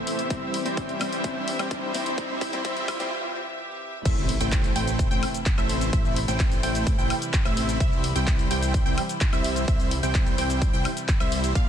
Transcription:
Already playing: E3 A3 C4 E4 G4 C5 E5, riser
0.07 open hi-hat
0.19 closed hi-hat
0.30 G3 C4 E4 C5 E5, kick, closed hi-hat
0.54 open hi-hat
0.65 G3 C4 E4 C5 G5, closed hi-hat
0.77 kick, closed hi-hat
0.89 closed hi-hat
1.00 G3 C4 E4 C5 G5, open hi-hat, high woodblock
1.13 closed hi-hat
1.24 G3 C4 E4 C5 E5, kick, closed hi-hat
1.48 open hi-hat
1.59 G3 C4 E4 C5 G5, closed hi-hat, high woodblock
1.71 kick, closed hi-hat
1.93 G3 C4 E4 C5 G5, open hi-hat
2.06 closed hi-hat
2.17 G3 C4 E4 C5 E5, kick, closed hi-hat
2.41 kick, open hi-hat
2.52 G3 C4 E4 C5 G5, closed hi-hat
2.64 G3 C4 E4 C5 E5, kick, closed hi-hat
2.77 closed hi-hat
2.88 kick, open hi-hat, high woodblock
2.99 G3 C4 E4 C5 G5, closed hi-hat
4.05 A1 C3 E3 A3 C4 E4 C5 E5, kick, closed hi-hat, crash, impact, shaker
4.18 shaker
4.29 open hi-hat
4.41 A1 A3 C4 E4 C5 G5, closed hi-hat, shaker
4.52 kick, clap, closed hi-hat, shaker
4.64 closed hi-hat, shaker
4.76 A1 A3 C4 E4 C5 G5, open hi-hat
4.88 closed hi-hat, shaker
4.99 kick, closed hi-hat, shaker
5.11 A1 A3 C4 E4 C5 G5, shaker
5.23 open hi-hat, high woodblock
5.34 closed hi-hat, shaker
5.46 kick, clap, closed hi-hat, shaker
5.58 A1 A3 C4 E4 C5 E5, high woodblock, shaker
5.69 open hi-hat
5.81 closed hi-hat, shaker
5.93 A1 G3 A3 C4 E4 C5 E5, kick, closed hi-hat, shaker
6.05 shaker
6.16 open hi-hat
6.28 A1 A3 C4 E4 C5 G5, closed hi-hat, shaker
6.40 kick, clap, closed hi-hat, shaker
6.52 closed hi-hat, shaker
6.63 A1 A3 C4 E4 C5 G5, open hi-hat
6.75 closed hi-hat, shaker
6.87 kick, closed hi-hat, shaker
6.98 A1 A3 C4 E4 C5 G5, shaker
7.10 open hi-hat, high woodblock
7.22 closed hi-hat, shaker
7.33 kick, clap, closed hi-hat, shaker
7.45 A1 A3 C4 E4 C5 E5, high woodblock, shaker
7.57 open hi-hat
7.69 closed hi-hat, shaker
7.80 C2 G3 C4 E4 C5 E5, kick, closed hi-hat, shaker
7.93 shaker
8.04 open hi-hat
8.16 C2 G3 C4 E4 C5 G5, closed hi-hat, shaker
8.27 kick, clap, closed hi-hat, shaker
8.39 closed hi-hat, shaker
8.51 C2 G3 C4 E4 C5 G5, open hi-hat
8.63 closed hi-hat, shaker
8.74 kick, closed hi-hat, shaker
8.86 C2 G3 C4 E4 C5 G5, shaker
8.98 open hi-hat, high woodblock
9.09 closed hi-hat, shaker
9.21 kick, clap, closed hi-hat, shaker
9.33 C2 G3 C4 E4 C5 E5, high woodblock, shaker
9.44 open hi-hat
9.56 closed hi-hat, shaker
9.68 C2 G3 C4 E4 C5 E5, kick, closed hi-hat, shaker
9.80 closed hi-hat, shaker
9.91 open hi-hat
10.03 C2 G3 C4 E4 C5 G5, closed hi-hat, shaker
10.15 kick, clap, closed hi-hat, shaker
10.27 closed hi-hat, shaker
10.38 C2 G3 C4 E4 C5 G5, open hi-hat
10.50 closed hi-hat, shaker
10.62 kick, closed hi-hat, shaker
10.73 C2 G3 C4 E4 C5 G5, shaker
10.85 open hi-hat, high woodblock
10.97 closed hi-hat, shaker
11.08 kick, clap, closed hi-hat, shaker
11.20 C2 G3 C4 E4 C5 E5, high woodblock, shaker
11.32 open hi-hat
11.44 closed hi-hat, shaker
11.55 A#1 D3 F3 A#3 D4 F4 D5 F5, kick, closed hi-hat, shaker

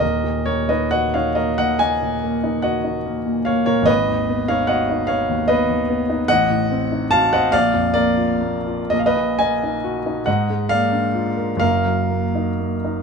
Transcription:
0.00 D#1 D#2 A#4 D#5
0.24 A#2
0.46 A#3 A#4 C#5
0.69 D#4 B4 D#5
0.91 F#4 D#5 F#5
1.14 D#4 C#5 F5
1.35 A#3 A#4 D#5
1.58 A#2 D#5 F#5
1.79 A#3 D#5 G#5
2.02 A#2
2.23 A#3
2.44 D#4
2.62 F#4 D#5 F#5
2.84 D#4
3.06 A#3
3.26 A#2
3.45 A#3 C#5 F5
3.66 A#2 A#4 C#5
3.83 G#1 D#5
3.87 B4
4.08 D#2
4.28 B3
4.48 D#4 C#5 F5
4.67 F#4 D#5 F#5
4.89 D#4
5.07 B3 C#5 F5
5.29 D#2
5.48 B3 B4 D#5
5.69 D#2
5.89 B3
6.10 D#4
6.28 A1 D#5 F#5
6.50 A2
6.71 C4
6.92 D#4
7.11 F#4 F5 A5
7.33 C5 D#5 F#5
7.52 A#1 D5 F5
7.74 F2
7.94 A#3 A#4 D5
8.17 F4
8.41 A#3
8.66 F4
8.90 A#1 D#5
8.99 F5
9.06 B4 D#5
9.16 A#2
9.39 A#3 D#5 G#5
9.63 D#4
9.84 F#4
10.06 D#4
10.26 G#2 D#5 F#5
10.49 G#3
10.69 A#3 D5 F5
10.92 D4
11.14 F4
11.37 A#4
11.57 F#1 F#2 F5
11.61 A#4
11.86 F#3
12.10 A#3
12.35 D#4
12.59 A#3
12.85 D#4

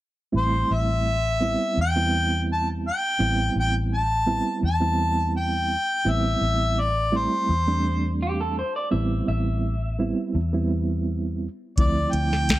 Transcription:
0.32 A1 G3 A3 C4 E4
0.37 C5
0.71 A1 E5
1.41 G3 B3 C4 E4
1.77 E2 G5
1.96 G3 B3 C4 E4
2.52 A5
2.88 G5
3.19 A1 G3 B3 C4 E4
3.56 A1
3.60 G5
3.94 A5
4.26 G3 B3 C4 E4
4.63 E2 A5
4.80 G3 B3 C4 E4
5.37 G5
6.05 A1 G3 B3 C4 E4
6.10 E5
6.41 A1
6.81 D5
7.12 G3 A3 C4 E4
7.16 C5
7.49 E2
7.68 G3 A3 C4 D4
8.22 G4
8.41 A4
8.59 C5
8.76 D5
8.91 A1 G3 B3 C4 E4 E5
9.28 A1 E5
9.99 G3 B3 C4 E4
10.35 E2
10.53 G3 B3 C4 E4
11.78 D2 F3 A3 C4 E4 D5, kick, closed hi-hat
12.12 D2 G5, closed hi-hat
12.33 snare
12.49 kick, snare, closed hi-hat

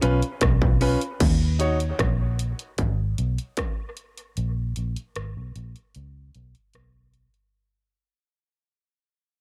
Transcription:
0.01 B1 C#4 F4 B4, closed hi-hat
0.22 closed hi-hat
0.41 B1, kick, cross-stick, closed hi-hat
0.62 F4 B4, kick
0.81 C#4 F4 B4, open hi-hat
1.01 closed hi-hat
1.20 D#2, kick, closed hi-hat, crash
1.59 D#4 F#4 C#5, closed hi-hat
1.80 closed hi-hat
1.99 A#1, kick, cross-stick, closed hi-hat
2.39 closed hi-hat
2.59 closed hi-hat
2.78 G#1, kick, closed hi-hat
3.18 B1, closed hi-hat
3.38 closed hi-hat
3.57 kick, cross-stick, closed hi-hat
3.97 closed hi-hat
4.18 closed hi-hat
4.37 A#1, closed hi-hat
4.76 A#1, closed hi-hat
4.96 closed hi-hat
5.16 G#1, cross-stick, closed hi-hat
5.37 B1
5.56 A#1, closed hi-hat
5.76 closed hi-hat
5.95 C#2, closed hi-hat
6.35 B1, closed hi-hat
6.55 closed hi-hat
6.74 B1, cross-stick, closed hi-hat
7.14 closed hi-hat
7.34 closed hi-hat

